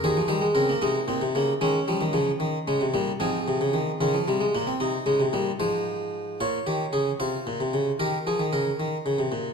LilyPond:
<<
  \new Staff \with { instrumentName = "Harpsichord" } { \time 12/8 \key bes \minor \tempo 4. = 76 << { c''8 c''8 bes'1~ bes'4 | aes'1~ aes'8 c''4. | des''4. c''4. bes'2. | } \\ { aes'4. ees'4. des'2. | c'4. f'4. r2. | f'8 g'8 aes'8 f'4. g'8 aes'8 bes'2 | } >> }
  \new Staff \with { instrumentName = "Harpsichord" } { \clef bass \time 12/8 \key bes \minor << { ees16 f16 g16 aes16 c'16 bes16 aes8 c'8 bes8 aes8 g8 f8 ees8 aes8 g8 | f4. ees16 f16 g16 aes16 bes16 c'16 ees'8 aes8 g8 f4. | r1. | } \\ { ees,8 ees8 des8 c8 bes,16 c16 des8 ees8 f16 ees16 des8 r8 des16 c16 bes,8 | aes,8 c16 des16 ees8 des8 c8 bes,8 c8 des16 c16 bes,8 aes,4. | bes,8 ees8 des8 c8 bes,16 c16 des8 ees8 f16 ees16 des8 ees8 des16 c16 bes,8 | } >> }
>>